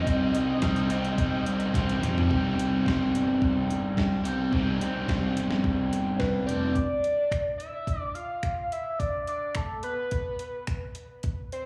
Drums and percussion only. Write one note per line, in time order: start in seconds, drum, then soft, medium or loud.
0.07 kick loud
0.07 closed hi-hat medium
0.35 closed hi-hat medium
0.62 kick loud
0.62 snare loud
0.62 closed hi-hat medium
0.76 closed hi-hat soft
0.90 closed hi-hat medium
1.05 closed hi-hat soft
1.18 kick loud
1.18 closed hi-hat medium
1.46 closed hi-hat medium
1.60 closed hi-hat soft
1.74 kick loud
1.74 snare medium
1.74 closed hi-hat loud
1.89 closed hi-hat soft
1.89 high tom medium
2.03 closed hi-hat medium
2.03 mid tom loud
2.18 floor tom medium
2.31 kick loud
2.59 closed hi-hat medium
2.86 kick loud
2.86 snare loud
3.15 closed hi-hat medium
3.42 kick loud
3.71 closed hi-hat medium
3.97 kick loud
3.97 snare medium
4.25 closed hi-hat medium
4.53 kick medium
4.81 closed hi-hat medium
5.08 kick loud
5.08 snare loud
5.37 closed hi-hat medium
5.51 snare medium
5.64 kick loud
5.93 closed hi-hat medium
6.20 kick medium
6.20 snare medium
6.49 closed hi-hat medium
6.75 kick medium
6.75 closed hi-hat medium
7.04 closed hi-hat medium
7.32 finger snap medium
7.32 kick medium
7.32 closed hi-hat medium
7.60 closed hi-hat soft
7.87 kick medium
7.87 closed hi-hat medium
8.15 closed hi-hat soft
8.43 finger snap medium
8.43 kick medium
8.43 closed hi-hat medium
8.72 closed hi-hat medium
9.00 kick medium
9.00 closed hi-hat medium
9.27 closed hi-hat soft
9.55 finger snap medium
9.55 kick medium
9.55 closed hi-hat medium
9.83 closed hi-hat medium
10.11 kick medium
10.11 closed hi-hat medium
10.39 closed hi-hat medium
10.67 finger snap medium
10.67 kick medium
10.67 closed hi-hat medium
10.95 closed hi-hat medium
11.23 kick medium
11.23 closed hi-hat medium
11.52 closed hi-hat soft